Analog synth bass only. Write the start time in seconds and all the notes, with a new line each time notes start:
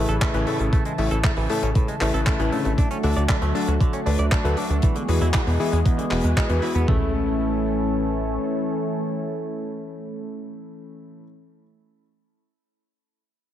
0.09 A1
0.34 A1
0.60 A1
0.98 A1
1.11 A1
1.37 A1
1.63 A1
2.01 A1
2.14 A1
2.40 A1
2.65 A1
3.04 D2
3.17 D2
3.42 D2
3.68 D2
4.06 D2
4.19 D2
4.45 D2
4.70 D2
5.09 E2
5.21 E2
5.47 E2
5.73 E2
6.11 E1
6.24 E2
6.50 E2
6.75 E2
6.88 A1